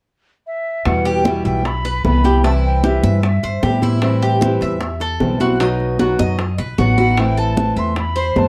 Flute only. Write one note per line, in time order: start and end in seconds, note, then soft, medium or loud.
0.47 0.88 E5 medium
0.86 1.08 F#5 medium
1.07 1.45 G5 medium
1.46 1.68 G5 medium
1.66 2.05 B5 loud
2.06 2.42 B5 loud
2.45 2.51 A5 medium
2.66 2.83 G5 medium
2.86 3.22 E5 medium
3.25 3.79 E5 medium
6.79 7.21 F#5 medium
7.19 7.41 G5 medium
7.39 7.80 A5 loud
7.79 7.98 C6 medium
7.99 8.40 B5 loud
8.38 8.48 A5 medium